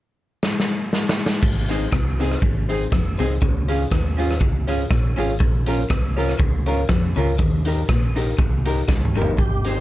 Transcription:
0.43 snare
0.60 snare
0.93 snare
1.09 snare
1.26 snare
1.42 G#1 G#2, kick, crash
1.69 C4 D#4 G#4, closed hi-hat
1.92 C2 C3, kick, cross-stick
2.19 C4 D#4 G#4, closed hi-hat
2.31 cross-stick
2.42 G#1 G#2, kick
2.69 C4 D#4 G#4, closed hi-hat
2.92 F1 F2, kick, cross-stick
3.18 C2 C3 C4 D#4 G#4, closed hi-hat
3.42 C#2 C#3, kick
3.68 C#4 F4 G#4, closed hi-hat
3.91 D#2 D#3, kick, cross-stick
4.17 C#4 F4 G#4, closed hi-hat
4.31 cross-stick
4.41 C#2 C#3, kick
4.67 C#4 F4 G#4, closed hi-hat
4.90 A#1 A#2, muted hollow-body jazz guitar stroke, kick, cross-stick
5.16 G#1 G#2 C#4 F4 G#4, closed hi-hat
5.40 A#1 A#2, kick
5.66 C#4 F4 A#4, closed hi-hat
5.90 C2 C3, kick, cross-stick
6.16 C#4 F4 A#4, closed hi-hat
6.29 cross-stick
6.39 C#2 C#3, kick
6.66 C#4 F4 A#4, closed hi-hat
6.89 F2 F3, kick, cross-stick
7.16 C#2 C#3 C#4 F4 A#4, open hi-hat
7.38 D#2 D#3, kick, hi-hat pedal
7.65 D#4 G4 A#4, closed hi-hat
7.89 A#1 A#2, kick, cross-stick
8.16 D#4 G4 A#4, closed hi-hat
8.38 C2 C3, kick
8.66 D#4 G4 A#4, closed hi-hat
8.88 C#2 C#3, kick, snare
9.05 mid tom
9.15 G1 G2 D#4 G4 A#4
9.22 floor tom
9.38 G#1 G#2 G4, kick
9.65 C4 D#4 G#4 C5, closed hi-hat

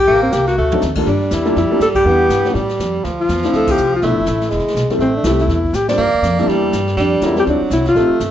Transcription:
Already playing: G4
0.07 A1 A#3, brush sweep
0.22 C4
0.32 C2 G4, snare, hi-hat pedal
0.47 F#4, snare
0.58 D2 A3
0.72 F#3 C4 D4 D#4 A4, floor tom
0.81 D#2, snare, hi-hat pedal
0.95 G3 A#3 D4 F4 A4, kick, crash
1.06 G2 G3 D4, brush sweep, snare
1.31 E2 E4, snare, hi-hat pedal
1.45 G3 A#3 D4 F4 A4, snare
1.56 F2 E4, brush sweep, snare
1.71 G3 A#3 D4 F4 A4
1.80 G2 A4, snare, hi-hat pedal
1.95 G4, kick, crash
2.05 E2 G3 B3 D4 E4 F#5, brush sweep
2.29 G2, snare, hi-hat pedal
2.45 F3 A3 C#4 E4 G4, snare
2.54 A2 G3, brush sweep, snare
2.69 snare
2.79 F2, snare, hi-hat pedal
3.04 D2 F3, brush sweep, snare
3.21 F4
3.29 E2, snare, hi-hat pedal
3.37 snare
3.43 F3 A3, snare
3.44 C4 D4 E4, snare
3.53 D2 A4, brush sweep, snare
3.67 G4, kick, crash
3.78 C2, hi-hat pedal
3.96 F4
4.02 B1 F3 A3 B3 D4 E4 F4, brush sweep, snare
4.11 A1
4.19 F1
4.26 A1, snare, hi-hat pedal
4.41 snare
4.50 E1 G#3, brush sweep, snare
4.59 snare
4.66 muted upright bass stroke, snare
4.75 B1, snare, hi-hat pedal
4.89 G3 A3 C4 E4 A4, muted upright bass stroke, snare
4.99 A1 A3 C4, brush sweep, snare
5.16 D4
5.24 C2 G3 A3 C4 E4 G4, snare, hi-hat pedal
5.39 E4, snare
5.48 E2, brush sweep, snare
5.64 kick
5.73 A2 G4, snare, hi-hat pedal
5.88 G3 A#3 D4 F4 C5 D5, snare, ride
5.97 G2 A#3, brush sweep
6.06 F2
6.14 D2
6.22 F2, snare, hi-hat pedal
6.38 G3 A#3 D4 E4 A4, snare
6.47 E2 G3, brush sweep, snare
6.72 G2, snare, hi-hat pedal
6.87 snare
6.97 F2 G3 D4, brush sweep, snare
7.21 E2 G#3 C#4 F4 F#4 A#4, snare, hi-hat pedal
7.25 E4
7.36 G3 C4 E4 F4 G4 A4, snare
7.46 D2 F#3 D4, brush sweep, snare
7.61 muted upright bass stroke
7.70 C2 E4, snare, hi-hat pedal
7.85 F4, snare
7.95 A1 A3 C4 D#4 G4 A4, brush sweep, snare
8.10 muted upright bass stroke
8.20 G1, snare, hi-hat pedal

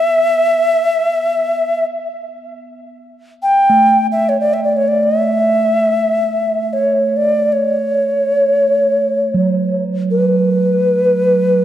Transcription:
Already playing: B3 E5
3.43 G5
3.70 A3
4.12 E5
4.29 C#5
4.40 D5
4.54 E5
4.64 D5
4.77 C#5
4.88 D5
5.03 E5
6.73 C#5
7.17 D5
7.52 C#5
9.34 F#3
10.11 B4

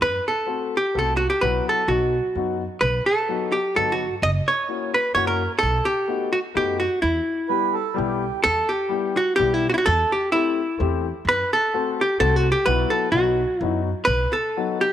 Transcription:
0.01 F#2 B4
0.28 A4
0.46 A3 C4 F#4 A4
0.77 G4
0.94 C2 A3 C4 F#4 A4
0.99 A4
1.17 F#4
1.30 G4
1.41 B1 F#3 B3 E4 F#4 B4
1.69 A4
1.88 B1 F#3 B3 D#4 F#4
2.35 F#2 F#3 B3 D#4 F#4
2.81 B1 B4
3.06 A4
3.28 F#3 B3 D#4 F#4
3.52 G4
3.75 G1 F#3 B3 D#4 F#4 A4
3.92 F#4
4.22 F#1 D#5
4.48 C#5
4.68 A#3 C#4 E4 F#4
4.94 B4
5.15 F#2 A#3 C#4 E4 F#4 C#5
5.27 A#4
5.59 A4
5.63 B1
5.85 G4
6.07 A3 B3 D#4 F#4
6.33 F#4
6.54 F#2 A3 B3 D#4 F#4 G4
6.80 F#4
7.02 E2 E4
7.49 G3 B3 E4 G4 B4
7.74 A4
7.94 G3 B3 E4 G4
7.98 B1
8.44 E2 A4
8.69 G4
8.89 G3 B3 E4 G4
9.17 F#4
9.36 B1 G3 B3 E4 G4
9.54 E4
9.69 F#4
9.74 E4 F#4
9.86 E2 A4
10.12 G4
10.32 A3 C4 E4 G4
10.78 E2 A3 C4 E4 G4
11.25 F#2 B4
11.53 A4
11.73 A3 C4 F#4 A4
12.01 G4
12.19 C2 A3 C4 F#4 A4
12.36 F#4
12.52 G4
12.66 B1 F#3 B3 E4 F#4 B4
12.90 A4
13.12 B1 F#3 B3 D#4 F#4
13.61 F#2 F#3 B3 D#4 E4 F#4
14.05 B1 B4
14.33 A4
14.57 F#3 B3 D#4 F#4
14.81 G4

